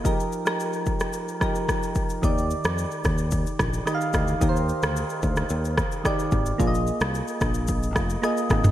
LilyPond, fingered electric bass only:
\new Staff \with { instrumentName = "Fingered electric bass" } { \clef bass \time 4/4 \key ees \major \tempo 4 = 110 r1 | ees,8. f,8 r16 ees,4 bes,,8 r8 d,8 | ees,8. d,8 r16 d,8 ees,8. r8. aes,,8 | bes,,8. c,8 r16 bes,,4 f,,8 r8 aes,,8 | }